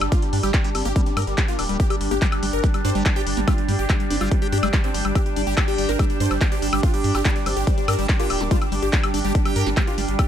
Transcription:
Already playing: D4 G4 G5 D6
0.01 G1 G3, closed hi-hat, high woodblock
0.12 G3 F4, kick, closed hi-hat
0.22 G3, closed hi-hat
0.33 G2 G3 D4, open hi-hat
0.43 G1 G3 G4, closed hi-hat, high woodblock
0.54 G3, kick, clap, closed hi-hat
0.64 G3 G4, closed hi-hat
0.75 G1 G3 C4, open hi-hat, high woodblock
0.85 G1 A#3 G4, closed hi-hat
0.96 G3, kick, closed hi-hat
1.06 G3, closed hi-hat
1.17 G2 G3 A#4, open hi-hat, high woodblock
1.22 closed hi-hat
1.27 G1 G3, closed hi-hat
1.38 G3, kick, clap, closed hi-hat
1.48 A#3 F4, closed hi-hat
1.59 D1 G3 D4, open hi-hat, high woodblock
1.69 D1 G3, closed hi-hat
1.80 G4, kick, closed hi-hat
1.90 G3 G4, closed hi-hat, high woodblock
2.01 G1 G3, open hi-hat
2.11 G1 A#3 G4, closed hi-hat
2.22 G3, kick, clap, closed hi-hat
2.32 G3, closed hi-hat, high woodblock
2.43 G1 G3, open hi-hat
2.53 G1 A#4, closed hi-hat
2.64 G3, kick, closed hi-hat
2.74 G3, closed hi-hat, high woodblock
2.85 G2 D4 C5, open hi-hat
2.90 closed hi-hat
2.95 G1 G3, closed hi-hat
3.02 G3 G6, kick, clap, closed hi-hat, high woodblock
3.16 G4, closed hi-hat
3.27 G1 G3, open hi-hat
3.37 G1 G3 A#3, closed hi-hat
3.48 G3 F4, kick, closed hi-hat, high woodblock
3.58 G3, closed hi-hat
3.69 G2 G3, open hi-hat
3.79 G1 G4, closed hi-hat
3.90 G3, kick, clap, closed hi-hat, high woodblock
4.00 G3, closed hi-hat
4.10 G1 G3 C4 D4, open hi-hat
4.21 G1 G3 F4, high woodblock
4.31 G3, kick, closed hi-hat
4.42 G3 G4, closed hi-hat
4.52 G2 D4 G4, open hi-hat
4.58 closed hi-hat
4.63 G1 G3 G#3, closed hi-hat, high woodblock
4.73 G3, kick, clap, closed hi-hat
4.84 C4, closed hi-hat
4.94 G1 G3, open hi-hat
5.05 G1 G3, closed hi-hat, high woodblock
5.15 G3 G4, kick, closed hi-hat, high woodblock
5.26 G3, closed hi-hat
5.36 G1 G3 D4, open hi-hat
5.47 G1 G3 G4, closed hi-hat
5.57 G3, kick, clap, closed hi-hat, high woodblock
5.68 G3 G4, closed hi-hat
5.78 G1 G3, open hi-hat
5.89 G1 G#3 A#4, closed hi-hat
5.99 G3, kick, closed hi-hat, high woodblock
6.10 G3, closed hi-hat
6.20 G2 G3 C5, open hi-hat
6.26 closed hi-hat
6.31 G1 G3, closed hi-hat, high woodblock
6.38 G3 D6, kick, clap, closed hi-hat
6.52 G4, closed hi-hat
6.62 G1 G3 D4, open hi-hat
6.73 G1 G3, closed hi-hat, high woodblock
6.83 F4, kick, closed hi-hat
6.94 G3 G4, closed hi-hat
7.04 G2 G3, open hi-hat
7.15 G1 G#3 G4, closed hi-hat, high woodblock
7.25 G3, kick, clap, closed hi-hat
7.36 G3, closed hi-hat
7.46 G1 G3 C4, open hi-hat, high woodblock
7.57 G1 G4, closed hi-hat
7.67 G3, kick, closed hi-hat
7.78 G3, closed hi-hat
7.88 G2 D4 A#4, open hi-hat, high woodblock
7.93 closed hi-hat
7.99 G1 G3, closed hi-hat
8.09 G3, kick, clap, closed hi-hat
8.20 A#3 F4 G4, closed hi-hat
8.30 D1 G3, open hi-hat, high woodblock
8.41 D1 G3 G#3, closed hi-hat
8.51 G3 F4, kick, closed hi-hat
8.62 G3, closed hi-hat, high woodblock
8.72 G1 G3, open hi-hat
8.82 G1 G4, closed hi-hat
8.93 G3, kick, clap, closed hi-hat
9.03 G3, closed hi-hat, high woodblock
9.14 G1 G3 D4, open hi-hat
9.24 G1 G3 G4, closed hi-hat
9.35 G3, kick, closed hi-hat
9.45 G3 G4, closed hi-hat, high woodblock
9.56 G2 A#4, open hi-hat
9.61 closed hi-hat
9.66 G1 G3 G#3, closed hi-hat
9.73 G3 F6, kick, clap, closed hi-hat, high woodblock
9.87 F4, closed hi-hat
9.98 G1 G3, open hi-hat
10.08 G1 G3, closed hi-hat
10.19 G3 G4, kick, closed hi-hat, high woodblock

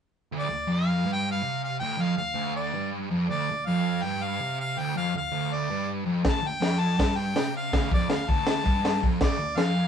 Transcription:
0.32 D2
0.39 D5
0.50 D2
0.67 F2
0.74 F5
1.05 G2
1.13 G5
1.32 F5
1.43 C3
1.64 F5
1.80 D2 G5
1.98 F2 F5
2.17 D2 F5
2.34 D2
2.56 D5
2.74 G2
3.11 F2
3.29 D2 D5
3.51 D2
3.66 F2 F5
4.03 G2 G5
4.24 F5
4.41 C3
4.60 F5
4.78 D2 G5
4.96 F2 F5
5.16 D2 F5
5.32 D2
5.53 D5
5.70 G2
6.06 F2
6.25 D2, kick, snare, open hi-hat
6.29 A5
6.43 D2 G5
6.61 F2, snare, open hi-hat
6.79 A5
6.99 G2, kick, snare, open hi-hat
7.16 G5
7.36 C3, snare, open hi-hat
7.57 F5
7.73 D2, kick, snare, open hi-hat
7.91 F2 D5, kick
8.10 D2 F5, snare, open hi-hat
8.29 D2 A5, kick
8.47 snare, open hi-hat
8.65 G2, kick
8.85 snare, open hi-hat
9.03 F2, kick
9.21 D2 D5, kick, snare, open hi-hat
9.39 D2
9.57 F2 F5, snare, open hi-hat

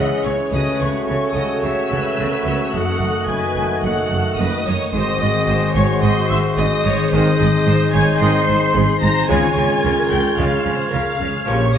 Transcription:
Already playing: C#3 E3 G#3 C#4 G#4 C#5 D#5 E5 F#5 G#5 F#6
0.00 E4
0.12 C#4
0.24 C#2 C#3 G#3 C#5 C#6
0.39 C#4
0.51 C#2 C#3 A3 F#4 B4 C#5 D#5 D#6
0.67 A3
0.79 C#2 C#3 C#5 C#6
0.95 F#4
1.07 C#2 C#3 A4 C#5 C#6
1.34 C#2 C#3 D#5 F#5 D#6
1.50 A5
1.62 C#2 C#3 C#5 E5 F#5 E6
1.77 A5
1.91 C#2 C#3 B4 F#5
2.18 C#2 C#3 F#4
2.31 C#4
2.45 C#2 C#3 A3
2.59 C#4
2.72 F#1 F#2 D#3 A3 A4 D#5 F#5 F#6
2.87 F#3
3.01 F#1 F#2 A3
3.15 D#4
3.27 F#1 F#2 F#4 B4 G#5 G#6
3.42 A4
3.56 F#1 F#2 D#5
3.70 F#5
3.83 F#1 F#2 A4 D#5 F#5 F#6
3.98 F#5
4.11 F#1 F#2
4.25 A4
4.38 F#1 F#2 D#4 B4 D#5 D#6
4.53 A3
4.65 F#1 F#2 F#3 C#5
4.80 A3
4.93 G#1 G#2 G#3 C4 F#4 C5 D#5 D#6
5.08 D#3
5.20 G#1 G#2 G#3 D#5
5.35 C4
5.47 G#1 G#2 F#4 C5
5.62 G#4
5.74 G#1 G#2 C5 C#5 C#6
5.88 F#5
6.01 G#1 G#2 C5 D#5 C6
6.15 F#5
6.29 G#1 G#2 E5
6.44 G#4
6.56 G#1 G#2 C4 D#5 D#6
6.71 G#3
6.84 G#1 G#2 D#3 C#5
6.98 G#3
7.11 G#1 G#2 D#3 G#3 C4 D#4 C5 D#5 D#6
7.25 D#3
7.38 G#1 G#2 G#3 G#4
7.52 C4
7.65 G#1 G#2 D#4 C5
7.79 G#4
7.93 G#1 G#2 C5 C#5 G#5 G#6
8.07 D#5
8.20 G#1 G#2 D#3 G#3 C4 D#4 C5 D#5 C6 C7
8.33 D#5
8.47 G#1 G#2 C5
8.60 G#4
8.74 G#1 G#2 C4 G#4
8.88 G#3
9.02 G#1 G#2 D#3 C5 A#5 A#6
9.16 G#3
9.27 C#2 C#3 G#3 C#4 F4 C#5 G#5 G#6
9.43 G#3
9.56 C#2 C#3 C#4
9.71 F4
9.83 C#2 C#3 G#4 A#4
9.98 C#5
10.09 C#2 C#3 F5 G5 G6
10.25 G#5
10.37 C#2 C#3 G#3 C#4 F4 G#4 F5 F6
10.64 C#2 C#3 C5 F5
10.91 C#2 C#3 F4 A#4 F5 F6
11.07 C#4
11.19 C#2 C#3 G#3 G#4
11.35 C#4
11.46 A#1 A#2 C#3 F3 A#3 G4 C#5 C#6
11.63 F3
11.74 D#5 D#6

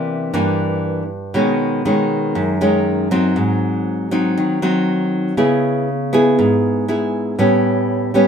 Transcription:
Already playing: C3 E3 A#3 D4
0.34 G2 E3 A#3 D4
1.34 B2 D#3 G#3 C#4
1.85 D#3 G#3 C#4
2.35 F#2
2.61 D#3 G#3 C#4
3.11 F#3 C4 D#4
3.36 G#2
4.11 F#3 C4 D#4
4.37 D#3
4.62 F#3 C4 D#4
5.37 C#3 B3 E4 G#4
6.13 B3 E4 G#4
6.39 G#2
6.88 B3 E4 G#4
7.39 A2 G3 B3 C#4
8.14 G3 B3 C#4

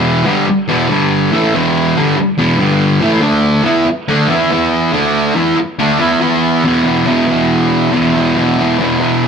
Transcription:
Already playing: E2 B2 E3
0.25 G2 D3 G3
0.47 muted distorted electric guitar stroke
0.68 E2 B2 E3
0.89 G2 D3 G3
1.32 A2 E3 A3
1.53 E2 B2 E3
1.96 G2 D3 G3
2.17 muted distorted electric guitar stroke
2.38 E2 B2 E3
2.58 G2 D3 G3
3.02 A2 E3 A3
3.21 D3 A3 D4
3.63 E3 B3 E4
3.86 muted distorted electric guitar stroke
4.08 D3 A3 D4
4.29 E3 B3 E4
4.51 E3 B3 E4
4.93 D3 A3 D4
5.35 E3 B3 E4
5.57 muted distorted electric guitar stroke
5.79 D3 A3 D4
6.00 E3 B3 E4
6.20 E3 B3 E4
6.63 E2 B2 E3
6.84 B2 E3
7.05 E2 B2 E3
7.26 B2 E3
7.91 E2 B2 E3
8.14 B2 E3
8.35 E2 B2 E3
8.58 B2 E3
8.79 E2 B2 E3
9.00 B2 E3

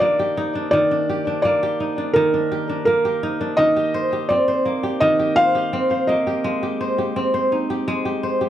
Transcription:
Already playing: D#3 D4 D#4 G4
0.00 A#3 D5
0.19 G4
0.37 D#4
0.55 D4
0.71 D#3 D5
0.91 D4
1.10 G4
1.27 D4
1.42 A#3 D5
1.63 G4
1.80 D#4
1.98 D4
2.13 D#3 A#4
2.34 D4
2.52 G4
2.69 D4
2.85 A#3 A#4
3.05 G4
3.23 D#4
3.41 D4
3.57 D#3 D#5
3.76 G4
3.94 C5
4.13 G4
4.29 C4 D5
4.48 C5
4.66 A#3
4.83 G4
5.00 D#3 D#5
5.19 G4
5.36 C5 F5
5.55 G4
5.73 C4
5.91 C5
6.07 A#3 D#5
6.27 G4
6.44 G#3
6.63 G4
6.81 C5
6.98 G4
7.16 C4
7.34 C5
7.52 D#4
7.70 G4
7.88 G#3
8.05 G4
8.23 C5
8.41 G4

